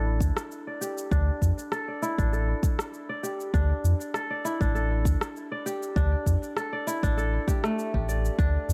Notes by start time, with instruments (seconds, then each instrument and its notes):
Already playing: analog synth bass A1, kora D4 E4 A4 D5
0.20 analog synth bass D2, kick, shaker
0.37 cross-stick, shaker
0.52 shaker
0.67 kora D5
0.81 kora G4, shaker
0.98 shaker
1.11 analog synth bass D2, kora D4, kick, shaker
1.42 analog synth bass F2, kick, shaker
1.58 shaker
1.72 kora A4, cross-stick, shaker
1.88 kora D5
2.02 kora E4, shaker
2.18 analog synth bass A1, kora D4, kick, shaker
2.33 kora A4, shaker
2.63 kick, shaker
2.79 cross-stick, shaker
2.94 shaker
3.09 kora D5
3.23 kora G4, shaker
3.40 shaker
3.54 analog synth bass D2, kora D4, kick, shaker
3.84 analog synth bass F2, shaker
4.01 shaker
4.14 kora A4, cross-stick, shaker
4.30 kora D5
4.45 kora E4, shaker
4.61 analog synth bass A1, kora D4, kick, shaker
4.75 kora A4, shaker
5.05 analog synth bass D2, kick, shaker
5.21 cross-stick, shaker
5.36 shaker
5.52 kora D5
5.66 kora G4, shaker
5.83 shaker
5.96 analog synth bass D2, kora D4, kick, shaker
6.26 analog synth bass F2, kick, shaker
6.43 shaker
6.57 kora A4, cross-stick, shaker
6.73 kora D5
6.87 kora E4, shaker
7.03 analog synth bass A1, kora D4, kick, shaker
7.17 kora A4, shaker
7.48 kora G4, kick, shaker
7.64 kora A3, cross-stick, shaker
7.79 shaker
7.94 analog synth bass A1, kora G4, kick
8.09 kora D5, shaker
8.25 shaker
8.39 analog synth bass D2, kora D4, kick, shaker
8.69 analog synth bass F2, shaker